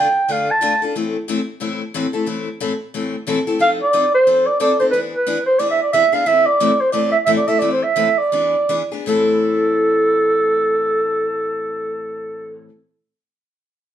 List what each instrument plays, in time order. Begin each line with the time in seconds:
Already playing: clarinet G5
0.28 steel-string acoustic guitar D3 A3 D4 F4 A4, clarinet F5
0.51 clarinet A5
0.61 steel-string acoustic guitar D3 A3 D4 F4 A4
0.82 steel-string acoustic guitar D4 F4 A4
0.95 steel-string acoustic guitar A2 E3 A3 C4 E4 A4
1.28 steel-string acoustic guitar A2 E3 A3 C4 E4 A4
1.60 steel-string acoustic guitar A2 E3 A3 C4 E4 A4
1.94 steel-string acoustic guitar A2 E3 A3 C4 E4 A4
2.13 steel-string acoustic guitar A3 C4 E4 A4
2.26 steel-string acoustic guitar A2 E3 A3 C4 E4 A4
2.60 steel-string acoustic guitar A2 E3 A3 C4 E4 A4
2.94 steel-string acoustic guitar A2 E3 A3 C4 E4 A4
3.27 steel-string acoustic guitar A2 E3 A3 C4 E4 A4
3.47 steel-string acoustic guitar A3 C4 E4 A4
3.59 steel-string acoustic guitar F3 C4 D#4 A4, clarinet F5
3.82 clarinet D5
3.93 steel-string acoustic guitar F3 C4 D#4 A4
4.14 clarinet C5
4.27 steel-string acoustic guitar F3 C4 D#4 A4
4.46 clarinet D5
4.60 steel-string acoustic guitar F3 C4 D#4 A4, clarinet D5
4.80 steel-string acoustic guitar C4 D#4 A4, clarinet C5
4.91 steel-string acoustic guitar E3 B3 D4 G#4, clarinet B4
5.15 clarinet B4
5.27 steel-string acoustic guitar E3 B3 D4 G#4
5.46 clarinet C5
5.59 steel-string acoustic guitar E3 B3 D4 G#4, clarinet D5
5.71 clarinet E5
5.82 clarinet D5
5.93 steel-string acoustic guitar E3 B3 D4 G#4, clarinet E5
6.12 steel-string acoustic guitar B3 D4 G#4, clarinet F5
6.26 steel-string acoustic guitar A2 E3 A3 C4 E4 A4, clarinet E5
6.46 clarinet D5
6.60 steel-string acoustic guitar A2 E3 A3 C4 E4 A4
6.80 clarinet C5
6.92 steel-string acoustic guitar A2 E3 A3 C4 E4 A4, clarinet D5
7.12 clarinet E5
7.26 steel-string acoustic guitar A2 E3 A3 C4 E4 A4, clarinet E5
7.37 clarinet D5
7.48 steel-string acoustic guitar A3 C4 E4 A4, clarinet E5
7.59 steel-string acoustic guitar A2 E3 A3 C4 E4 A4, clarinet D5
7.72 clarinet C5
7.83 clarinet E5
7.96 steel-string acoustic guitar A2 E3 A3 C4 E4 A4
8.18 clarinet D5
8.32 steel-string acoustic guitar E3 B3 D4 G#4
8.69 steel-string acoustic guitar E3 B3 D4 G#4
8.92 steel-string acoustic guitar B3 D4 G#4
9.06 steel-string acoustic guitar A2 E3 A3 C4 E4 A4, clarinet A4